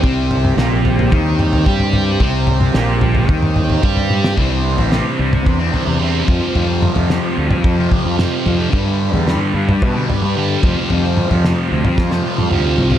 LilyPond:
<<
  \new Staff \with { instrumentName = "Transistor combo organ" } { \time 4/4 \key f \lydian \tempo 4 = 110 << { g'1~ | g'1 | c''1~ | c''1 |
b'2.~ b'8 c''8~ | c''1 | } \\ { c'1~ | c'1 | d'2.~ d'8 f'8~ | f'1 |
d'2.~ d'8 f'8~ | f'1 | } >> }
  \new Staff \with { instrumentName = "Transistor combo organ" } { \clef bass \time 4/4 \key f \lydian g1~ | g1 | e2.~ e8 g8~ | g1~ |
g1~ | g1 | }
  \new Staff \with { instrumentName = "Distorted electric guitar" } { \clef bass \time 4/4 \key f \lydian <c c'>4 <bes, bes>4 <ees ees'>4 <g g'>4 | <c c'>4 <bes, bes>4 <ees ees'>4 <g g'>4 | <c g c'>16 <g c'>8 <g c'>16 <c g c'>8 <c g c'>8. <g c'>16 <c g c'>8 <c g c'>8 <f, c f>16 <c f>16 | <f, c f>16 <c f>8 <c f>16 <f, c f>8 <f, c f>8. <c f>16 <f, c f>8 <f, c f>8. <c f>16 |
<g, d g>16 <d g>8 <d g>16 <g, d g>8 <g, d g>8. <d g>16 <g, d g>8 <g, d g>8 <f, c f>16 <c f>16 | <f, c f>16 <c f>8 <c f>16 <f, c f>8 <f, c f>8. <c f>16 <f, c f>8 <f, c f>8. <c f>16 | }
  \new Staff \with { instrumentName = "Fingered electric bass" } { \clef bass \time 4/4 \key f \lydian c,4 bes,,4 ees,4 g,4 | c,4 bes,,4 ees,4 g,4 | c,8. a,,8 r16 c,8 e,8 r16 e,8. f,16 r16 | f,8. f,8 r16 d,16 r16 f,8 r16 f,8 r16 f,8 |
g,8. e,8 r16 g,8 b,8 r16 g,8. f,16 r16 | f,8. f,8 r16 d,16 r16 f,8 r16 f,16 d,8 c,8 | }
  \new Staff \with { instrumentName = "Synth drone" } { \clef bass \time 4/4 \key f \lydian c,1~ | c,1 | r1 | r1 |
r1 | r1 | }
  \new DrumStaff \with { instrumentName = "Drums" } \drummode { \time 4/4 <bd tomfh>8 tomfh16 toml16 sn8 tomfh16 tomfh16 <bd tomfh toml>8 toml16 tomfh16 bd16 tomfh16 tomfh8 | <bd tomfh>8 tomfh16 toml16 sn8 tomfh16 tomfh16 <bd tomfh>16 toml16 <tomfh toml>16 tomfh16 bd16 tomfh16 tommh16 sn16 | <bd tomfh>8. tomfh16 sn8. <tomfh toml>16 bd8 tomfh8 r8 <bd tomfh>8 | tomfh8 toml16 tomfh16 sn8. <tomfh toml>16 bd8 <bd tomfh>8 <sn toml>8 tomfh8 |
<bd tomfh>8. tomfh16 sn8. <tomfh toml>16 bd8 tomfh8 r8 <bd tomfh>8 | tomfh8 toml16 tomfh16 sn8. <tomfh toml>16 <bd sn>16 sn8 tommh16 toml8 tomfh16 tomfh16 | }
>>